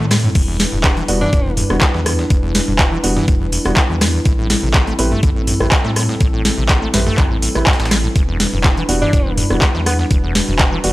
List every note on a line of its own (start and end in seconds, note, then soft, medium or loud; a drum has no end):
0.00 0.28 A2 loud
0.00 8.12 G3 medium
0.00 0.31 C4 medium
0.00 8.12 E4 medium
0.00 0.31 A4 medium
0.11 0.18 A2 loud
0.11 cross-stick medium
0.11 snare medium
0.11 open hi-hat medium
0.11 open hi-hat loud
0.24 0.30 A2 loud
0.24 mid tom medium
0.35 0.64 E1 loud
0.35 0.42 E2 loud
0.35 4.21 D4 medium
0.35 4.21 B4 medium
0.35 kick loud
0.35 closed hi-hat medium
0.35 crash medium
0.48 0.58 E2 loud
0.59 0.67 E2 medium
0.59 snare medium
0.59 closed hi-hat medium
0.59 open hi-hat loud
0.72 1.01 E1 loud
0.72 0.79 G2 loud
0.84 0.88 G2 loud
0.84 kick loud
0.84 snare loud
0.84 clap loud
0.84 closed hi-hat medium
0.97 1.03 E3 loud
0.97 closed hi-hat soft
1.08 1.24 E1 loud
1.08 1.16 E2 medium
1.08 1.20 G3 loud
1.08 1.20 B3 medium
1.08 1.20 D4 medium
1.08 1.20 F#4 loud
1.08 closed hi-hat medium
1.08 open hi-hat loud
1.21 1.31 E3 loud
1.21 1.57 D4 loud
1.21 mid tom medium
1.33 1.62 E1 loud
1.33 1.40 A2 loud
1.33 kick loud
1.33 closed hi-hat medium
1.46 1.52 E2 medium
1.57 1.64 E2 medium
1.57 closed hi-hat medium
1.57 mid tom medium
1.57 open hi-hat loud
1.70 1.77 E1 medium
1.70 1.76 E2 medium
1.70 1.77 G3 medium
1.70 1.77 B3 medium
1.70 1.77 D4 medium
1.70 1.77 F#4 medium
1.70 cross-stick medium
1.81 1.86 E3 medium
1.81 kick loud
1.81 snare loud
1.81 clap loud
1.81 closed hi-hat medium
1.94 2.23 E2 loud
1.94 2.01 E3 loud
1.94 snare medium
2.06 2.13 E2 loud
2.06 cross-stick medium
2.06 closed hi-hat medium
2.06 open hi-hat loud
2.19 2.25 E2 loud
2.19 snare medium
2.30 2.60 E1 loud
2.30 2.37 E2 loud
2.30 kick loud
2.30 closed hi-hat medium
2.43 2.53 E2 loud
2.55 2.62 E2 medium
2.55 snare medium
2.55 closed hi-hat medium
2.55 open hi-hat loud
2.68 2.96 E1 loud
2.68 2.74 G2 loud
2.79 2.83 G2 loud
2.79 kick loud
2.79 snare loud
2.79 clap loud
2.79 closed hi-hat medium
2.92 2.98 E3 loud
3.03 3.19 E1 loud
3.03 3.11 E2 medium
3.03 3.16 G3 medium
3.03 3.16 B3 medium
3.03 3.16 D4 medium
3.03 3.16 F#4 loud
3.03 closed hi-hat medium
3.03 open hi-hat loud
3.16 3.26 E3 loud
3.16 snare medium
3.16 mid tom medium
3.28 3.57 E1 loud
3.28 3.35 A2 loud
3.28 kick loud
3.28 closed hi-hat medium
3.41 3.47 E2 medium
3.52 3.59 E2 medium
3.52 closed hi-hat medium
3.52 open hi-hat loud
3.65 3.72 E1 medium
3.65 3.72 E2 medium
3.65 3.72 G3 medium
3.65 3.72 B3 medium
3.65 3.72 D4 medium
3.65 3.72 F#4 loud
3.65 cross-stick medium
3.65 closed hi-hat soft
3.77 3.81 E3 medium
3.77 kick loud
3.77 snare loud
3.77 clap loud
3.77 closed hi-hat medium
3.90 4.18 E2 loud
3.90 3.96 E3 loud
4.01 4.08 E2 loud
4.01 cross-stick medium
4.01 snare medium
4.01 open hi-hat medium
4.01 open hi-hat loud
4.14 4.20 E2 loud
4.25 4.55 A1 loud
4.25 4.33 A2 loud
4.25 8.12 C4 medium
4.25 8.12 A4 medium
4.25 kick loud
4.25 closed hi-hat medium
4.38 4.48 A2 loud
4.50 4.57 A2 medium
4.50 snare medium
4.50 closed hi-hat medium
4.50 open hi-hat loud
4.63 4.91 A1 loud
4.63 4.69 C3 loud
4.74 4.78 C3 loud
4.74 kick loud
4.74 snare loud
4.74 clap loud
4.74 closed hi-hat medium
4.87 4.93 A3 loud
4.87 closed hi-hat soft
4.99 5.14 A1 loud
4.99 5.06 A2 medium
4.99 5.11 C4 loud
4.99 5.11 E4 medium
4.99 5.11 G4 medium
4.99 5.11 B4 loud
4.99 closed hi-hat medium
4.99 open hi-hat loud
5.12 5.21 A3 loud
5.12 mid tom medium
5.23 5.52 A1 loud
5.23 5.30 D3 loud
5.23 kick loud
5.23 closed hi-hat medium
5.36 5.42 A2 medium
5.47 5.55 A2 medium
5.47 closed hi-hat medium
5.47 mid tom medium
5.47 open hi-hat loud
5.60 5.67 A1 medium
5.60 5.67 A2 medium
5.60 5.67 C4 medium
5.60 5.67 E4 medium
5.60 5.67 G4 medium
5.60 5.67 B4 medium
5.60 cross-stick medium
5.72 5.76 A3 medium
5.72 kick loud
5.72 snare loud
5.72 clap loud
5.72 closed hi-hat medium
5.85 6.13 A2 loud
5.85 5.91 A3 loud
5.85 snare medium
5.96 6.03 A2 loud
5.96 cross-stick medium
5.96 closed hi-hat medium
5.96 open hi-hat loud
6.09 6.15 A2 loud
6.09 snare medium
6.20 6.50 A1 loud
6.20 6.28 A2 loud
6.20 kick loud
6.20 closed hi-hat medium
6.33 6.43 A2 loud
6.45 6.52 A2 medium
6.45 snare medium
6.45 closed hi-hat medium
6.45 open hi-hat loud
6.58 6.86 A1 loud
6.58 6.64 C3 loud
6.69 6.74 C3 loud
6.69 kick loud
6.69 snare loud
6.69 clap loud
6.69 closed hi-hat medium
6.82 6.88 A3 loud
6.94 7.09 A1 loud
6.94 7.01 A2 medium
6.94 7.06 C4 medium
6.94 7.06 E4 medium
6.94 7.06 G4 medium
6.94 7.06 B4 loud
6.94 snare medium
6.94 closed hi-hat medium
6.94 mid tom medium
6.94 open hi-hat loud
7.06 7.16 A3 loud
7.06 snare medium
7.06 mid tom loud
7.18 7.47 A1 loud
7.18 7.25 D3 loud
7.18 kick loud
7.18 clap medium
7.18 closed hi-hat medium
7.31 7.37 A2 medium
7.42 7.50 A2 medium
7.42 closed hi-hat medium
7.42 open hi-hat loud
7.55 7.62 A1 loud
7.55 7.59 C3 medium
7.55 7.62 C4 medium
7.55 7.62 E4 medium
7.55 7.62 G4 medium
7.55 7.62 B4 medium
7.55 cross-stick medium
7.55 closed hi-hat soft
7.67 7.74 G2 medium
7.67 kick loud
7.67 snare medium
7.67 clap loud
7.67 closed hi-hat medium
7.73 snare medium
7.73 closed hi-hat medium
7.80 8.08 A1 medium
7.80 7.93 A2 medium
7.80 snare medium
7.80 closed hi-hat medium
7.85 snare medium
7.85 closed hi-hat medium
7.91 7.98 A3 loud
7.91 cross-stick medium
7.91 snare medium
7.91 closed hi-hat medium
7.91 open hi-hat loud
8.04 8.08 A2 loud
8.15 8.45 E1 loud
8.15 8.23 E2 loud
8.15 10.93 G3 medium
8.15 10.93 D4 medium
8.15 10.09 E4 medium
8.15 10.93 B4 medium
8.15 kick loud
8.15 closed hi-hat medium
8.29 8.38 E2 loud
8.40 8.47 E2 medium
8.40 snare medium
8.40 closed hi-hat medium
8.40 open hi-hat loud
8.53 8.82 E1 loud
8.53 8.59 F#2 loud
8.64 8.69 G2 loud
8.64 kick loud
8.64 snare loud
8.64 clap loud
8.64 closed hi-hat medium
8.77 8.84 E3 loud
8.77 closed hi-hat soft
8.89 9.04 E1 loud
8.89 8.96 E2 medium
8.89 9.01 G3 loud
8.89 9.01 B3 medium
8.89 9.01 D4 medium
8.89 9.01 F#4 loud
8.89 closed hi-hat medium
8.89 open hi-hat loud
9.02 9.11 E3 loud
9.02 9.38 D4 medium
9.02 mid tom loud
9.13 9.42 E1 loud
9.13 9.20 A2 loud
9.13 kick loud
9.13 closed hi-hat medium
9.26 9.33 E2 medium
9.38 9.45 E2 medium
9.38 closed hi-hat medium
9.38 mid tom loud
9.38 open hi-hat loud
9.50 9.57 E1 medium
9.50 9.57 E2 medium
9.50 9.57 G3 medium
9.50 9.57 B3 medium
9.50 9.57 D4 medium
9.50 9.57 F#4 medium
9.50 cross-stick medium
9.62 9.66 E3 medium
9.62 kick loud
9.62 snare loud
9.62 clap loud
9.62 closed hi-hat medium
9.75 10.04 E2 loud
9.75 9.81 E3 loud
9.75 snare medium
9.86 9.94 E2 loud
9.86 9.95 B3 medium
9.86 cross-stick medium
9.86 closed hi-hat medium
9.86 open hi-hat loud
9.99 10.06 E2 loud
9.99 10.07 B3 medium
9.99 snare medium
10.11 10.40 E1 loud
10.11 10.18 E2 loud
10.11 10.93 F#4 medium
10.11 kick loud
10.11 closed hi-hat medium
10.24 10.33 E2 loud
10.35 10.42 E2 medium
10.35 snare medium
10.35 closed hi-hat medium
10.35 open hi-hat loud
10.48 10.77 E1 loud
10.48 10.54 F#2 loud
10.59 10.64 G2 loud
10.59 kick loud
10.59 snare loud
10.59 clap loud
10.59 closed hi-hat medium
10.72 10.79 E3 loud
10.84 10.93 E1 loud
10.84 10.91 E2 medium
10.84 10.93 G3 loud
10.84 10.93 B3 medium
10.84 10.93 D4 medium
10.84 10.93 F#4 loud
10.84 closed hi-hat medium
10.84 open hi-hat loud